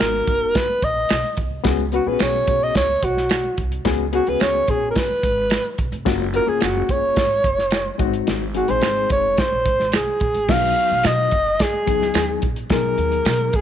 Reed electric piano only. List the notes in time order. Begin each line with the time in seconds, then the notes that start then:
Already playing: B3 D#4 F#4 A#4
1.64 B3 C#4 F#4 G#4
1.93 B3 C#4 F#4 B4
2.06 B3 C#4 F4 G#4
2.14 F#4
3.85 B3 C#4 F#4 G#4
4.12 B3 C#4 F#4 G#4
4.27 B3 C#4 F#4 G#4
6.05 A#3 C#4 F4 F#4
6.33 A#3 C#4 F4 F#4
6.47 A#3 C#4 F4 G#4
7.98 G#3 B3 D#4 F#4
8.05 C4
8.54 G#3 C4 D#4 G#4
8.68 G#3 C4 D#4 G#4
10.48 F#3 B3 D4 F#4
11.86 F#3 B3 D#4 G#4
12.70 F#3 B3 D#4 G#4